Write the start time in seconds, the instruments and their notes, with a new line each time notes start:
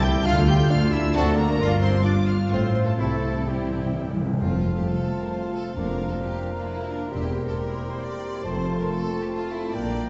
Already playing: double bass section C2, cello section C2, bassoon E4
0.03 viola section E3 E4, clarinet G4, flute section G5, violin section G5 G6
0.14 viola section G3 G4
0.24 double bass section D2, cello section D2, french horn section A3 D4, viola section A3 F4, trumpet section F4, bassoon F4, clarinet F4, violin section F5 F6, flute section F5
0.37 viola section D4 A4
0.48 viola section A3 F4, clarinet G4, violin section G5 G6, flute section G5
0.60 viola section D4 A4
0.69 double bass section D2, cello section D2, viola section A3 F4, bassoon D4, clarinet F4, violin section F5 F6, flute section F5
0.82 viola section D4 A4
0.92 viola section A3 F4, clarinet E4, violin section E5 E6, flute section E5
1.05 viola section D4 A4
1.14 double bass section D2, cello section D2, clarinet A3, french horn section C4 D4, viola section D4 F#4, trumpet section F#4, violin section A4 A5, flute section A4
1.28 viola section C4 A4
1.36 clarinet A#3, viola section D4 F#4, violin section A#4 A#5, flute section A#4
1.50 viola section C4 A4
1.59 double bass section G1, cello section G2, french horn section A#3 D4, viola section D4 F4, trumpet section F4
1.81 clarinet C4, flute section C5, violin section C5 C6
2.04 clarinet D4, viola section D4 F4, bassoon F4, violin section D5 D6, flute section D5
2.27 clarinet F4, violin section F5 F6, flute section F5
2.50 double bass section A1, cello section A2, french horn section A3 C4, clarinet C4, viola section C4 F4, trumpet section F4, violin section C5 C6, flute section C5
2.74 clarinet C4, violin section C5 C6, flute section C5
2.86 clarinet A3, violin section A4 A5, flute section A4
2.98 double bass section C2, timpani C3, cello section C3, french horn section G3 C4, clarinet A3, viola section C4 E4, trumpet section E4, bassoon E4, flute section A4, violin section A4 A5
3.07 timpani C3
3.15 timpani C3
3.23 timpani C3
3.38 timpani C3
3.47 timpani C3, clarinet G3, viola section C4 E4, violin section G4 G5, flute section G4
3.54 timpani C3
3.63 timpani C3
3.71 timpani C3
3.78 timpani C3
3.86 timpani C3
3.93 timpani C3
4.01 timpani C3
4.09 timpani C3
4.17 timpani C3
4.26 timpani C3
4.33 timpani C3
4.41 double bass section F1, timpani F2, cello section F2, bassoon F3, viola section A3 C4, french horn section A3 C4, violin section F4 F5, clarinet F4, cor anglais F5, flute section A5
4.54 viola section C4
4.65 viola section F4
4.76 violin section G4, viola section A4
4.87 viola section F4, violin section A4
4.98 viola section C4
5.10 viola section A3
5.21 viola section C4, violin section A#4
5.32 viola section F4, violin section C5
5.42 viola section A4
5.53 viola section F4, violin section A4
5.65 viola section C4
5.76 double bass section F1, timpani F2, cello section F2, viola section A#3 D4, french horn section A#3 D4, clarinet D4, violin section A#4, flute section A#5
5.88 viola section D4
6.00 viola section F4
6.11 violin section A4, viola section A#4
6.22 viola section F4, violin section G4
6.34 viola section D4
6.45 viola section A#3
6.56 viola section D4, violin section F4
6.66 violin section E4, viola section F4
6.78 viola section A#4
6.89 violin section D4, viola section F4
7.01 viola section D4
7.11 double bass section E1, cello section E2, bassoon G3, french horn section C4, viola section C4, clarinet G4, violin section G4 G5, cor anglais A#4, flute section C6
7.23 viola section E4
7.34 viola section G4
7.45 violin section A4, viola section A#4
7.56 viola section G4, violin section A#4
7.67 viola section E4
7.79 viola section C4
7.90 viola section E4, violin section C5
8.01 viola section G4, violin section D5
8.12 viola section A#4
8.22 viola section G4
8.34 viola section E4
8.44 double bass section F1, cello section F2, viola section A3, french horn section A3, bassoon A3, clarinet F4, violin section C5 A5, cor anglais A5
8.56 viola section C4
8.67 viola section F4
8.78 viola section A4, violin section A#4
8.89 viola section F4, violin section A4
9.00 viola section C4
9.11 viola section A3
9.22 viola section C4, violin section G4
9.32 viola section F4, violin section F4
9.43 viola section A4
9.54 violin section E4, viola section F4
9.64 viola section C4
9.74 double bass section A#1, cello section A#2, french horn section G3 A#3, bassoon A#3, viola section A#3, clarinet D4, violin section D5 G5, cor anglais G5, flute section A#5
9.86 viola section D4
9.97 viola section G4